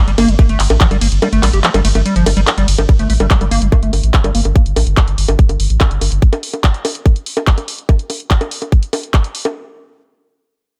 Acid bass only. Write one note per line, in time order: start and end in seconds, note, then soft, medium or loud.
0.08 0.11 G3 medium
0.18 0.30 A#3 loud
0.28 0.35 G3 medium
0.39 0.43 A3 medium
0.49 0.59 A3 medium
0.81 0.87 F3 medium
0.91 0.97 G3 medium
1.01 1.08 A#3 medium
1.22 1.28 G3 medium
1.33 1.42 A3 medium
1.43 1.49 G3 medium
1.53 1.60 G4 medium
1.64 1.70 F3 medium
1.74 1.80 G3 medium
1.85 1.88 A3 medium
1.95 2.01 A3 medium
2.06 2.15 G3 medium
2.16 2.25 F3 medium
2.26 2.30 G3 medium
2.37 2.41 G3 loud
2.58 2.67 G3 medium
2.78 2.82 F3 medium
2.89 2.93 G3 medium
2.99 3.09 A3 medium
3.10 3.13 A3 medium
3.20 3.26 G3 medium
3.31 3.37 G3 medium
3.41 3.45 G3 medium
3.51 3.63 A#3 loud
3.62 3.68 G3 medium
3.72 3.76 A3 medium
3.83 3.92 A3 medium
4.14 4.20 F3 medium
4.24 4.30 G3 medium
4.35 4.41 A#3 medium